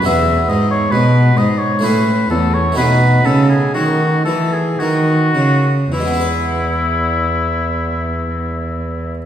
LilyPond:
<<
  \new Staff \with { instrumentName = "Oboe" } { \time 3/4 \key e \major \tempo 4 = 58 e''8 dis''16 cis''16 b'8 dis''16 cis''16 b'8 a'16 cis''16 | b'8 a'16 gis'16 fis'8 a'16 gis'16 fis'4 | e'2. | }
  \new Staff \with { instrumentName = "Harpsichord" } { \clef bass \time 3/4 \key e \major << { <gis b e'>2 <a cis' e'>4 | <a b dis'>2. | <e gis b e' b'>2. | } \\ { e,8 gis,8 b,8 gis,8 a,8 e,8 | b,8 cis8 dis8 e8 dis8 cis8 | r2. | } >> }
  \new Staff \with { instrumentName = "Cello" } { \clef bass \time 3/4 \key e \major e,8 gis,8 b,8 gis,8 a,8 e,8 | b,8 cis8 dis8 e8 dis8 cis8 | e,2. | }
>>